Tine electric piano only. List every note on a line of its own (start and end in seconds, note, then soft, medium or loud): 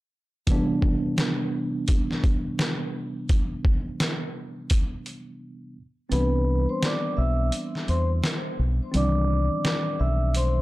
0.47 3.25 C3 medium
0.47 3.26 E3 medium
0.47 3.27 G3 medium
0.47 3.27 B3 medium
0.52 3.28 D4 medium
6.09 8.90 E3 medium
6.09 8.90 G3 medium
6.09 8.91 B3 medium
6.09 8.89 C4 medium
6.14 8.91 D4 medium
8.92 9.02 D#3 medium
8.92 10.62 G3 medium
8.92 10.62 C4 medium
8.97 10.62 E3 medium
8.97 10.62 D4 medium